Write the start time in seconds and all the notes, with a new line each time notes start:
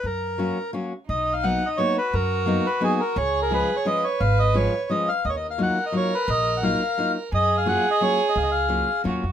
0.04 F#2 A#4
0.38 F#3 A#3 C#4 F#4
0.73 F#3 A#3 C#4 F#4
1.08 B1 D#4 D#5
1.33 F5
1.43 F#3 A#3 B3 D#4 F#5
1.66 D#5
1.77 F#3 A#3 B3 D#4 F#4 C#5
1.98 B4
2.13 F#2 A#4
2.46 F#3 A#3 B3 D#4
2.66 B4
2.80 F#3 A#3 B3 D#4 G#4
3.00 A#4
3.16 C#2 G#4 C#5
3.42 A#4
3.51 F3 G#3 C#4 F4 B4
3.76 C#5
3.85 F3 G#3 C#4 F4 B4 D#5
4.04 C#5
4.20 G#1 F5
4.39 D#5
4.54 F3 G#3 C#4 F4 C#5
4.89 F3 G#3 C#4 F4 D#5
5.09 F5
5.23 D#2 A#4 D#5
5.30 C#5
5.36 D#5
5.50 F5
5.58 F#3 A#3 D#4 F4
5.63 F#5
5.86 D#5
5.92 F#3 A#3 D#4 F4
5.97 C#5
6.14 B4
6.28 A#1 D#5
6.57 F#5
6.62 F#3 A#3 D#4 F4 F5
6.98 F#3 A#3 D#4 F4
7.31 F#2 G#4 D#5
7.57 F5
7.66 F#3 A#3 C#4 F4 F#5
7.91 D#5
8.01 F#3 A#3 C#4 F4 C#5
8.29 D#5
8.36 C#2 F5
8.43 D#5
8.52 F5
8.69 F#3 A#3 C#4 F4
9.04 D#2 F#3 A#3 C#4 F4 F#4
9.23 F2